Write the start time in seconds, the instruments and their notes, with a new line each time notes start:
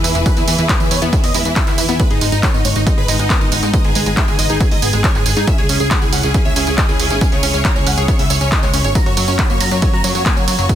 Already playing: string section E3 E4 G#4 B4
0.04 analog synth bass E2, synth pluck E3, supersaw synth E4, open hi-hat, tambourine
0.15 analog synth bass E1, synth pluck E3, supersaw synth E4, closed hi-hat, tambourine
0.26 synth pluck E3, supersaw synth B4, kick, closed hi-hat, tambourine
0.37 analog synth bass E2, synth pluck E2, supersaw synth E4, closed hi-hat, tambourine
0.48 analog synth bass E2, synth pluck E3, supersaw synth E4, open hi-hat, tambourine
0.58 analog synth bass E2, synth pluck E3, supersaw synth E4, closed hi-hat, tambourine
0.69 synth pluck E4, supersaw synth C#5, kick, clap, closed hi-hat, tambourine
0.80 analog synth bass E2, synth pluck E3, supersaw synth E4, closed hi-hat, tambourine
0.91 analog synth bass E2, synth pluck E3, supersaw synth C#5, open hi-hat, tambourine
1.02 analog synth bass E2, synth pluck B3, supersaw synth E4, closed hi-hat, tambourine
1.13 synth pluck D#3, supersaw synth E4, kick, closed hi-hat, tambourine
1.24 synth pluck E2, analog synth bass E2, supersaw synth D#5, open hi-hat, tambourine
1.34 analog synth bass E2, synth pluck G#3, supersaw synth E4, open hi-hat, tambourine
1.45 analog synth bass E2, synth pluck E3, supersaw synth E4, closed hi-hat, tambourine
1.56 synth pluck E3, supersaw synth E5, kick, clap, closed hi-hat, tambourine
1.67 analog synth bass E2, synth pluck E3, supersaw synth E4, clap, closed hi-hat, tambourine
1.78 analog synth bass E2, synth pluck E3, supersaw synth E4, open hi-hat, tambourine
1.89 analog synth bass E2, synth pluck B3, supersaw synth E4, closed hi-hat, tambourine
2.00 synth pluck G#3, string section G#3 B3 D#4, supersaw synth B4, kick, closed hi-hat, tambourine
2.10 analog synth bass G#1, supersaw synth D#4, synth pluck G#4, closed hi-hat
2.21 analog synth bass G#1, synth pluck G#3, supersaw synth D#4, open hi-hat, tambourine
2.32 analog synth bass G#1, synth pluck D#4, supersaw synth D#4, closed hi-hat, tambourine
2.43 synth pluck D#3, supersaw synth C#5, kick, clap, closed hi-hat, tambourine
2.54 analog synth bass G#1, synth pluck B3, supersaw synth D#4, tambourine
2.65 analog synth bass G#1, synth pluck G#3, supersaw synth C#5, open hi-hat, tambourine
2.76 analog synth bass G#1, synth pluck G#3, supersaw synth D#4, closed hi-hat, tambourine
2.87 synth pluck G#3, supersaw synth D#4, kick, closed hi-hat, tambourine
2.97 analog synth bass G#1, synth pluck G#4, supersaw synth B4
3.08 analog synth bass G#1, synth pluck G#3, supersaw synth D#4, open hi-hat, tambourine
3.19 analog synth bass G#1, synth pluck G#3, supersaw synth D#4, closed hi-hat, tambourine
3.30 synth pluck B3, supersaw synth A#4, kick, clap, closed hi-hat, tambourine
3.41 analog synth bass G#1, synth pluck G#3, supersaw synth D#4, tambourine
3.52 analog synth bass G#1, synth pluck G#3, supersaw synth D#4, open hi-hat, tambourine
3.63 analog synth bass G#2, synth pluck G#3, supersaw synth D#4, closed hi-hat, tambourine
3.74 synth pluck G#3, supersaw synth D#5, kick, closed hi-hat, tambourine
3.84 analog synth bass G#1, synth pluck G#2, supersaw synth G#4, closed hi-hat
3.95 analog synth bass G#1, synth pluck G#3, supersaw synth G#4, open hi-hat, tambourine
4.06 analog synth bass G#1, synth pluck G#3, supersaw synth G#4, closed hi-hat, tambourine
4.17 synth pluck G#4, supersaw synth E5, kick, clap, closed hi-hat, tambourine
4.28 analog synth bass G#1, synth pluck G#3, supersaw synth G#4, tambourine
4.39 analog synth bass G#1, synth pluck G#3, supersaw synth D#5, open hi-hat, tambourine
4.50 analog synth bass G#1, synth pluck D#4, supersaw synth G#4, closed hi-hat, tambourine
4.61 synth pluck F#3, supersaw synth G#4, kick, closed hi-hat, tambourine
4.71 analog synth bass G#1, synth pluck G#2, supersaw synth D#5, open hi-hat
4.82 analog synth bass G#1, synth pluck B3, supersaw synth G#4, open hi-hat, tambourine
4.93 analog synth bass G#1, synth pluck G#3, supersaw synth G#4, closed hi-hat, tambourine
5.04 synth pluck G#3, supersaw synth C#5, kick, clap, closed hi-hat, tambourine
5.15 analog synth bass G#1, synth pluck G#3, supersaw synth G#4, clap, tambourine
5.26 analog synth bass G#1, synth pluck G#3, supersaw synth G#4, open hi-hat, tambourine
5.36 analog synth bass G#2, synth pluck D#4, supersaw synth G#4, closed hi-hat, tambourine
5.47 string section C#3 C#4 E4 G#4, synth pluck C#4, supersaw synth E5, kick, closed hi-hat, tambourine
5.58 analog synth bass C#2, supersaw synth G#4, synth pluck C#5, closed hi-hat
5.69 analog synth bass C#2, synth pluck C#4, supersaw synth G#4, open hi-hat, tambourine
5.80 analog synth bass C#2, supersaw synth G#4, synth pluck G#4, closed hi-hat, tambourine
5.91 synth pluck G#3, supersaw synth F#5, kick, clap, closed hi-hat, tambourine
6.02 analog synth bass C#2, synth pluck E4, supersaw synth G#4, tambourine
6.13 analog synth bass C#2, synth pluck C#4, supersaw synth F#5, open hi-hat, tambourine
6.23 analog synth bass C#2, synth pluck C#4, supersaw synth G#4, closed hi-hat, tambourine
6.34 synth pluck C#4, supersaw synth G#4, kick, closed hi-hat, tambourine
6.45 analog synth bass C#2, synth pluck C#5, supersaw synth E5
6.56 analog synth bass C#2, synth pluck C#4, supersaw synth G#4, open hi-hat, tambourine
6.67 analog synth bass C#2, synth pluck C#4, supersaw synth G#4, closed hi-hat, tambourine
6.78 synth pluck E4, supersaw synth D#5, kick, clap, closed hi-hat, tambourine
6.89 analog synth bass C#2, synth pluck C#4, supersaw synth G#4, tambourine
7.00 analog synth bass C#2, synth pluck C#4, supersaw synth G#4, open hi-hat, tambourine
7.10 analog synth bass G#1, synth pluck C#4, supersaw synth G#4, closed hi-hat, tambourine
7.21 synth pluck C#4, supersaw synth G#5, kick, closed hi-hat, tambourine
7.32 analog synth bass C#2, synth pluck C#3, supersaw synth C#5, closed hi-hat
7.43 analog synth bass C#2, synth pluck C#4, supersaw synth C#5, open hi-hat, tambourine
7.54 analog synth bass C#2, synth pluck C#4, supersaw synth C#5, closed hi-hat, tambourine
7.65 synth pluck C#5, supersaw synth A#5, kick, clap, closed hi-hat, tambourine
7.76 analog synth bass C#2, synth pluck C#4, supersaw synth C#5, tambourine
7.87 analog synth bass C#2, synth pluck C#4, supersaw synth F#5, open hi-hat, tambourine
7.97 analog synth bass C#2, synth pluck G#4, supersaw synth C#5, closed hi-hat, tambourine
8.08 synth pluck B3, supersaw synth C#5, kick, closed hi-hat, tambourine
8.19 analog synth bass C#2, synth pluck C#3, supersaw synth E5, open hi-hat
8.30 analog synth bass C#2, synth pluck C#5, supersaw synth C#5, open hi-hat, tambourine
8.41 analog synth bass C#2, synth pluck C#4, supersaw synth C#5, closed hi-hat, tambourine
8.52 synth pluck G#4, supersaw synth D#5, kick, clap, closed hi-hat, tambourine
8.63 analog synth bass C#2, synth pluck G#3, supersaw synth C#5, clap, tambourine
8.73 analog synth bass C#2, synth pluck C#4, supersaw synth C#5, open hi-hat, tambourine
8.84 analog synth bass G#1, synth pluck C#5, supersaw synth C#5, closed hi-hat, tambourine
8.95 synth pluck F#3, string section A#3 F#4, supersaw synth A#5, kick, closed hi-hat, ride, tambourine
9.06 analog synth bass F#2, synth pluck F#4, supersaw synth C#5, closed hi-hat
9.17 analog synth bass F#2, synth pluck F#3, supersaw synth C#5, open hi-hat, ride, tambourine
9.28 analog synth bass F#2, synth pluck C#4, supersaw synth C#5, closed hi-hat, tambourine
9.39 supersaw synth B5, kick, clap, closed hi-hat, ride, tambourine
9.50 analog synth bass F#2, synth pluck A#3, supersaw synth C#5, tambourine
9.60 analog synth bass F#2, synth pluck F#3, supersaw synth A#5, open hi-hat, ride, tambourine
9.71 analog synth bass F#2, synth pluck F#3, supersaw synth C#5, closed hi-hat, tambourine
9.82 synth pluck F#3, supersaw synth C#5, kick, closed hi-hat, ride, tambourine
9.93 analog synth bass F#2, synth pluck F#4, supersaw synth A#5
10.04 analog synth bass F#2, synth pluck F#3, supersaw synth C#5, open hi-hat, ride, tambourine
10.15 analog synth bass F#2, synth pluck F#3, supersaw synth C#5, closed hi-hat, tambourine
10.26 synth pluck A#3, supersaw synth G#5, kick, clap, closed hi-hat, ride, tambourine
10.37 analog synth bass F#2, synth pluck F#3, supersaw synth C#5, tambourine
10.48 analog synth bass F#2, synth pluck F#3, supersaw synth C#5, open hi-hat, ride, tambourine
10.58 analog synth bass F#1, synth pluck F#3, supersaw synth C#5, closed hi-hat, tambourine
10.69 kick, closed hi-hat, ride, tambourine